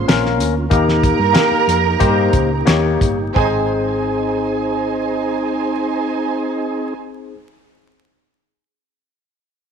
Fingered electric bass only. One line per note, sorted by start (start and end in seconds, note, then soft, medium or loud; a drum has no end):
0.10 0.41 A#1 loud
0.41 0.66 D2 loud
0.71 1.11 D#2 loud
1.19 1.32 G2 medium
1.51 muted fingered electric bass stroke soft
1.68 1.95 F2 medium
2.01 2.28 G2 medium
2.34 2.61 C#2 medium
2.67 2.95 D#2 medium
3.01 3.30 G1 medium
3.36 7.34 G#1 medium